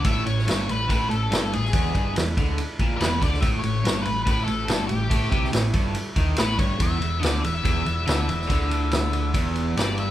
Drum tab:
RD |x-x-x-x-x-x-x-x-|x-x-x-x-x-x-x-x-|x-x-x-x-x-x-x-x-|x-x-x-x-x-x-x-x-|
SD |---oo-------o--o|----o-------o--o|----o-------o---|---oo-------o---|
BD |o-------o-------|o-o---o---o---o-|o-------o-------|o-o---o---o---o-|

RD |x-x-x-x-x-x-x-x-|x-x-x-x-x-x-x-x-|
SD |----o-------o--o|----o-------o---|
BD |o-------o-------|o-------o-------|